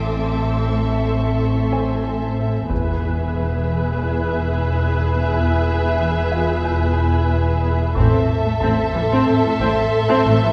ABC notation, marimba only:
X:1
M:4/4
L:1/8
Q:1/4=91
K:Am
V:1 name="Marimba" clef=bass
A,, A,, A, A, A,, A,, z A,, | E,, E,, E, E, E,, E,, E,, E,, | E,, E,, E, E, E,, E,, E,, E,, | A,, A,, A, A, A,, A,, A,, A,, |]